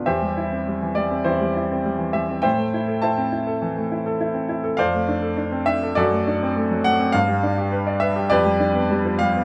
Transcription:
\new Staff \with { instrumentName = "Upright piano" } { \time 4/4 \key c \major \tempo 4 = 102 << { <g' c'' e''>4. d''8 <e' g' c''>4. e''8 | <c'' e'' g''>4 <c'' e'' a''>2~ <c'' e'' a''>8 r8 | <c'' d'' f''>4. e''8 <fis' a' d''>4. fis''8 | f''4. e''8 <g' b' d''>4. f''8 | } \\ { e,16 g16 e'16 c'16 g16 e16 g16 c'16 e,16 g16 e'16 c'16 g16 e16 g16 c'16 | a,16 a16 e'16 a'16 e'16 c'16 e'16 a'16 e16 a16 e'16 a'16 e'16 c'16 e'16 a'16 | f,16 a16 d'16 a'16 d'16 c'16 d'16 a'16 fis,16 a16 d'16 c'16 a16 fis16 a16 c'16 | g,16 g16 d'16 g'16 b'16 d''16 b'16 g'16 f,16 g16 d'16 b16 g16 f16 g16 b16 | } >> }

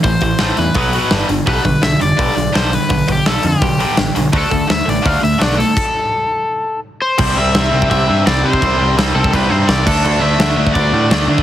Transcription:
<<
  \new Staff \with { instrumentName = "Overdriven electric guitar" } { \time 4/4 \key c \major \tempo 4 = 168 c''4. b'2 r8 | b'4 e''8 d''4. c''8 b'8~ | b'8 g'8 a'8 g'2 r8 | a'4 e''8 d''8 f''8 e''8 d''8 a'8~ |
a'2. r8 c''8~ | c''8 e''4. e''4 d''8 c''8~ | c''4 r8 a'8 b'8 c''8 d''8 a'8~ | a'8 e''4. d''2 | }
  \new Staff \with { instrumentName = "Distorted electric guitar" } { \clef bass \time 4/4 \key c \major <a, e>8 <a, e>8 <a, e a>8 <a, e>8 <b, fis b>8 <b, fis b>8 <g, d g>8 <g, d>8 | <g, d g>8 <g, d>8 <g, d>8 <g, d>8 <g, d g>8 <g, d>8 <g, d g>8 <g, d>8 | <g, d>8 <g, d>8 <g, d g>8 <g, d>8 <g, d>8 <g, d g>8 <g, d>8 <g, d>8 | <d a d'>8 <d a>8 <d a>8 <d a>8 <d a d'>8 <d a>8 <d a d'>8 <d a>8 |
r1 | <c g c'>8 <c g c'>8 <c g c'>8 <c g c'>8 <c g c'>8 <c g c'>8 <c g c'>8 <c g c'>8 | <c g c'>8 <c g c'>8 <c g c'>8 <c g c'>8 <c g c'>8 <c g c'>8 <c g c'>8 <d a d'>8 | <d a d'>8 <d a d'>8 <d a d'>8 <d a d'>8 <d a d'>8 <d a d'>8 <d a d'>8 <d a d'>8 | }
  \new Staff \with { instrumentName = "Picked electric bass" } { \clef bass \time 4/4 \key c \major a,,8 a,,8 a,,8 e,8 b,,4 g,,8 g,,8 | b,,8 b,,8 b,,8 f,,8 b,,8 b,,8 b,,4 | b,,8 b,,8 b,,8 f,8 b,,4 a,,8 b,,8 | d,8 d,8 d,8 a,,8 d,8 d,8 b,,4 |
r1 | c,8 c,8 c,8 c,8 c,8 g,8 c,8 c8 | c,8 c,8 c,8 c,8 c,8 g,8 c,8 d,8 | d,8 d,8 d,8 d,8 d,8 a,8 d,8 d8 | }
  \new DrumStaff \with { instrumentName = "Drums" } \drummode { \time 4/4 <hho bd>8 <hho bd>8 <hho sn>8 hho8 <hho bd>8 hho8 <hho sn>8 hho8 | <hho bd>8 <hho bd>8 <hho sn>8 hho8 <hho bd>8 hho8 <hho sn>8 hho8 | <hho bd>8 <hho bd>8 <hho sn>8 hho8 <hho bd>8 hho8 <hho sn>8 hho8 | <hho bd>8 <hho bd>8 <hho sn>8 hho8 <hho bd>8 hho8 <hho sn>8 hho8 |
<cymc bd>4 r4 r4 r4 | <cymc bd>4 <cymc sn>8. bd16 <cymc bd>4 <cymc sn>8. bd16 | <cymc bd>4 <cymc sn>8. bd16 <cymc bd>4 <cymc sn>8 <cymc bd>8 | cymc4 <cymc sn>8. bd16 <cymc bd>4 <cymc sn>8. bd16 | }
>>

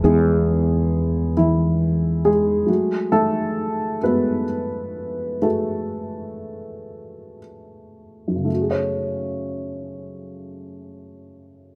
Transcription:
<<
  \new Staff \with { instrumentName = "Upright piano" } { \time 6/8 \key fis \minor \tempo 4. = 42 gis'4. <e e'>4 <gis gis'>8~ | <gis gis'>8 <a a'>4 <b b'>4. | a'2 r4 | r2. | }
  \new Staff \with { instrumentName = "Upright piano" } { \time 6/8 \key fis \minor <gis b e'>2. | <fis a fis'>4. <gis a fis'>8 r4 | <a fis' gis'>2. | <fis, cis a fis' gis' cis''>2. | }
  \new Staff \with { instrumentName = "Fretless electric bass" } { \clef bass \time 6/8 \key fis \minor e,2. | r2. | r2. | r2. | }
>>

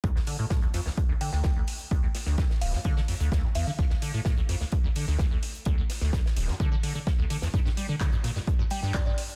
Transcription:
<<
  \new Staff \with { instrumentName = "Synth bell" } { \time 4/4 \key d \minor \tempo 4 = 128 r2 r8 g''16 g''16 r4 | r4. f''8. r4 r16 f''8~ | f''4 r2. | r1 |
r2 r8 g''16 g''16 d''16 d''16 r8 | }
  \new Staff \with { instrumentName = "Acid bass" } { \clef bass \time 4/4 \key d \minor d,16 d,16 d16 a,16 a,16 d,16 f,16 d,16 r16 d,16 d16 d,16 r16 d,16 r8 | d,16 d,16 r16 d,16 d,16 r16 d,,16 g,16 d16 d16 f,16 d,16 d,16 a,16 e,16 d16 | d,16 d,16 d16 a,16 a,16 d,16 f,16 d,16 r16 d,16 d16 d,16 d,16 d,16 r8 | d,16 d,16 r16 d,16 d,16 r16 d,,16 g,16 d16 d16 d16 d16 f16 d,16 d16 e,16 |
g,16 g,16 g16 d16 d16 g,16 bes,16 g,16 r16 g,16 g16 g,16 g,16 g,16 r8 | }
  \new DrumStaff \with { instrumentName = "Drums" } \drummode { \time 4/4 <hh bd>16 sn16 <hh hho>8 <hh bd sn>16 hh16 <hh hho sn>16 sn16 <hh bd>8 <hh hho>16 sn16 <hh bd sn>8 <hh hho>16 hh16 | <hh bd>8 <hh hho sn>16 sn16 <hh bd sn>16 sn16 <hh hho>16 sn16 <hh bd>16 sn16 hho16 hh16 <hh bd sn>8 <hh hho>8 | <hh bd>16 sn16 <hh hho>8 <hh bd sn>16 hh16 <hh hho sn>16 sn16 <hh bd>8 <hh hho>16 sn16 <hh bd sn>8 <hh hho>16 hh16 | <hh bd>8 <hh hho sn>16 sn16 <hh bd sn>16 sn16 <hh hho>16 sn16 <hh bd>8 hho16 hh16 <hh bd sn>8 <hh hho>16 <hh sn>16 |
<hh bd>16 sn16 <hh hho>8 <hc hh bd sn>16 hh16 <hh hho sn>16 sn16 <hh bd>8 <hh hho>16 sn16 <hc hh bd sn>8 <hh hho>16 hh16 | }
>>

